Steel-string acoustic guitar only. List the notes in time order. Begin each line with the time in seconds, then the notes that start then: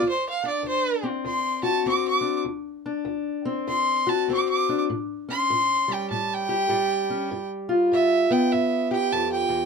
0.02 D2
0.44 D4
0.63 D2
1.03 C4
1.25 D2
1.63 F#4
1.86 D2 C4
2.21 D4
2.45 D2
2.86 D4
3.05 D2
3.45 C4
3.67 D2
4.07 F#4
4.28 D2 C4
4.69 D4
4.90 A2
5.29 C#4
5.50 A2
5.88 G3
6.11 A2
6.49 G4
6.69 A2 G3
7.10 C#4
7.31 G2
7.69 F4
7.92 G2
8.31 B3
8.53 G2
8.91 G4
9.12 F2
9.49 E2